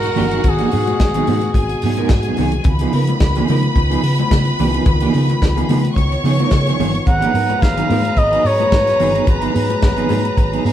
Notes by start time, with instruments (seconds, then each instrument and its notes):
Already playing: french horn section B2 G#3 F#4, violin section F#4 F#5, flugelhorn A#4
0.03 muted clean electric guitar stroke, snare, closed hi-hat, muted conga
0.15 fingered electric bass G1, clean electric guitar F#3 B3 D#4 G#4, open hi-hat, low conga
0.29 clean electric guitar F#3 B3 D#4 G#4, closed hi-hat
0.44 fingered electric bass G#1, muted clean electric guitar stroke, kick, closed hi-hat, muted conga, low conga
0.49 flugelhorn G#4
0.58 clean electric guitar F#3 B3 D#4 G#4, closed hi-hat
0.71 fingered electric bass G#2, clean electric guitar F#3 B3 D#4 G#4, open hi-hat
0.87 muted clean electric guitar stroke, closed hi-hat, high conga
1.00 fingered electric bass G#1, muted clean electric guitar stroke, kick, snare, closed hi-hat, muted conga
1.14 clean electric guitar F#3 B3 D#4 G#4, closed hi-hat, low conga
1.27 fingered electric bass G#2, clean electric guitar F#3 B3 D#4 G#4, open hi-hat, high conga
1.41 closed hi-hat
1.54 fingered electric bass G#1, violin section G#4 G#5, muted clean electric guitar stroke, kick, closed hi-hat, muted conga
1.69 muted clean electric guitar stroke, closed hi-hat
1.82 fingered electric bass G#2, clean electric guitar F#3 B3, open hi-hat
1.86 clean electric guitar D#4 G#4
1.97 clean electric guitar B3 D#4 A#4, closed hi-hat, high conga
2.01 clean electric guitar F#3
2.09 fingered electric bass G#2, muted clean electric guitar stroke, kick, snare, closed hi-hat
2.23 closed hi-hat
2.27 clean electric guitar F#3 B3 D#4 G#4
2.37 fingered electric bass C2, clean electric guitar F#3 B3 D#4 G#4, open hi-hat, low conga
2.52 muted clean electric guitar stroke, closed hi-hat
2.64 fingered electric bass C#2, french horn section D#3 B3 F4, violin section B4 B5, muted clean electric guitar stroke, kick, closed hi-hat, muted conga, low conga
2.79 clean electric guitar B3 D#4 G#4, closed hi-hat, muted conga
2.83 clean electric guitar F3
2.93 fingered electric bass C#3, clean electric guitar F3 B3 D#4 A#4, open hi-hat
3.07 muted clean electric guitar stroke, closed hi-hat, high conga
3.20 fingered electric bass C#2, muted clean electric guitar stroke, kick, snare, closed hi-hat, muted conga
3.35 clean electric guitar F3 B3 D#4 G#4, closed hi-hat, muted conga, low conga
3.48 fingered electric bass C#3, clean electric guitar F3 B3 D#4 A#4, open hi-hat, high conga
3.63 muted clean electric guitar stroke, closed hi-hat
3.76 fingered electric bass C#2, muted clean electric guitar stroke, kick, closed hi-hat, muted conga
3.90 clean electric guitar F3 B3 D#4 G#4, closed hi-hat, muted conga
4.03 fingered electric bass C#3, muted clean electric guitar stroke, open hi-hat
4.19 muted clean electric guitar stroke, closed hi-hat, high conga
4.31 fingered electric bass C#3, muted clean electric guitar stroke, kick, snare, closed hi-hat
4.45 muted clean electric guitar stroke, closed hi-hat
4.59 fingered electric bass C2, clean electric guitar F3 B3 D#4 G#4, open hi-hat, low conga
4.74 clean electric guitar F3 B3 D#4 G#4, closed hi-hat
4.86 fingered electric bass C#2, muted clean electric guitar stroke, kick, closed hi-hat, muted conga, low conga
5.00 clean electric guitar F3 B3 D#4 G#4, closed hi-hat
5.14 fingered electric bass C#3, clean electric guitar F3 B3 D#4 G#4, open hi-hat
5.29 muted clean electric guitar stroke, closed hi-hat, high conga
5.42 fingered electric bass C#2, muted clean electric guitar stroke, kick, snare, closed hi-hat, muted conga
5.56 clean electric guitar F3 B3 D#4 G#4, closed hi-hat, muted conga, low conga
5.69 fingered electric bass C#3, clean electric guitar F3 B3 D#4 G#4, open hi-hat, high conga
5.85 muted clean electric guitar stroke, closed hi-hat
5.96 fingered electric bass C#2, violin section C#5 C#6, muted clean electric guitar stroke, kick, closed hi-hat, muted conga
6.12 muted clean electric guitar stroke, closed hi-hat, muted conga
6.24 fingered electric bass C#3, clean electric guitar F3 B3 D#4 G#4, open hi-hat
6.39 clean electric guitar F3 B3 D#4 A#4, closed hi-hat, high conga
6.51 fingered electric bass C#3, kick, snare, closed hi-hat, muted conga
6.66 clean electric guitar F3 B3 D#4 G#4, snare, closed hi-hat, muted conga
6.79 fingered electric bass G1, clean electric guitar F3 B3 D#4 G#4, open hi-hat, low conga
6.94 muted clean electric guitar stroke, closed hi-hat
7.06 fingered electric bass G#1, french horn section F#3 G#4, violin section B4 A#5, flugelhorn F#5, muted clean electric guitar stroke, kick, closed hi-hat, muted conga, low conga
7.21 clean electric guitar F#3 B3 D#4 G#4, closed hi-hat, muted conga
7.34 fingered electric bass G#2, clean electric guitar F#3 B3 D#4 A#4, open hi-hat
7.49 muted clean electric guitar stroke, closed hi-hat, high conga
7.62 fingered electric bass G#1, flugelhorn F5, muted clean electric guitar stroke, kick, snare, closed hi-hat, muted conga
7.76 clean electric guitar F#3 B3 D#4 G#4, closed hi-hat, muted conga, low conga
7.89 fingered electric bass G#2, clean electric guitar F#3 B3 D#4 A#4, open hi-hat, high conga
8.05 closed hi-hat
8.17 fingered electric bass G#1, flugelhorn D#5, muted clean electric guitar stroke, kick, closed hi-hat, muted conga
8.32 clean electric guitar F#3 B3 D#4 G#4, closed hi-hat
8.44 fingered electric bass G#2, flugelhorn C#5, muted clean electric guitar stroke, open hi-hat
8.59 muted clean electric guitar stroke, closed hi-hat, high conga
8.72 fingered electric bass G#2, muted clean electric guitar stroke, kick, snare, closed hi-hat, muted conga
8.87 muted clean electric guitar stroke, snare, closed hi-hat, muted conga
9.00 fingered electric bass G1, clean electric guitar F#3 B3 D#4 G#4, open hi-hat, low conga
9.14 clean electric guitar F#3 B3 D#4 G#4, closed hi-hat
9.25 fingered electric bass G#1, flugelhorn B4, muted clean electric guitar stroke, kick, closed hi-hat, muted conga, low conga
9.41 clean electric guitar F#3 B3 D#4 G#4, closed hi-hat, muted conga
9.54 fingered electric bass G#2, clean electric guitar F#3 B3 D#4 G#4, open hi-hat
9.69 muted clean electric guitar stroke, closed hi-hat, high conga
9.82 fingered electric bass G#1, muted clean electric guitar stroke, kick, snare, closed hi-hat, muted conga
9.97 clean electric guitar F#3 B3 D#4 G#4, closed hi-hat, muted conga, low conga
10.09 fingered electric bass G#2, clean electric guitar F#3 B3 D#4 G#4, open hi-hat, high conga
10.24 muted clean electric guitar stroke, closed hi-hat
10.37 fingered electric bass G#1, muted clean electric guitar stroke, kick, closed hi-hat, muted conga
10.52 clean electric guitar F#3 B3 D#4 G#4, closed hi-hat
10.65 fingered electric bass G#2, clean electric guitar F#3 B3 D#4 G#4, open hi-hat